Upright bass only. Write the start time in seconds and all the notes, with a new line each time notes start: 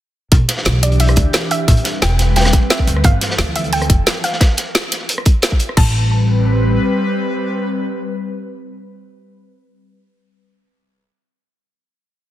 0.32 E1
0.66 B1
1.17 D2
1.68 A1
2.02 E1
2.87 D2
3.04 G1
3.38 D2
3.90 F1
5.77 A1